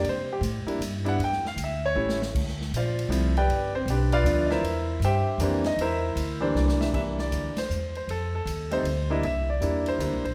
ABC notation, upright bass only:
X:1
M:3/4
L:1/8
Q:"Swing" 1/4=157
K:Cmix
V:1 name="Upright bass" clef=bass
C,2 A,, z G,,2 | E,,2 D,,2 A,,,2 | D,,2 B,,,2 C,,2 | G,,,2 =B,,,2 D,,2 |
E,,2 G,,2 F,,2 | E,,2 D,,2 C,,2 | C,,2 D,, z E,,2 | F,,2 _E,,2 D,,2 |
C,,2 E,,2 (3D,, C,, B,,, |]